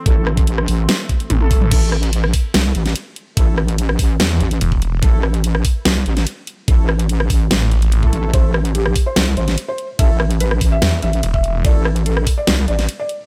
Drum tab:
CC |----------------|x---------------|----------------|----------------|
RD |----------------|x---x---x---x---|x---x---x---x---|x---x---x---x---|
HH |x--xx-o-x-xxx-o-|x--xx-o-x-xxx-x-|x--xx-o-x-xxx-x-|x--xx-o-x-xxx-x-|
SD |--r--r--o-------|--r--r--o--o----|--r--r--o-------|--r--r--o--o----|
T1 |------------oo--|----------------|----------------|----------------|
T2 |---------------o|----------------|----------------|----------------|
BD |o--o------o---o-|o-----o---------|o-----o------o--|o-----o---------|

CC |----------------|----------------|----------------|----------------|
RD |x---x---x---x---|x---x---x---x---|x---x---x---x---|x---x---x---x---|
HH |x--xx-o-x-xxx-x-|x--xx-o-x-xxx-x-|x--xx-o-x-xxx-x-|x--xx-o-x-xxx-x-|
SD |--r--r--o-------|--r--r--o--o----|--r--r--o-------|--r--r--o--o----|
T1 |----------------|----------------|----------------|----------------|
T2 |----------------|----------------|----------------|----------------|
BD |o-----o------o--|o-----o---------|o-----o------o--|o-----o---------|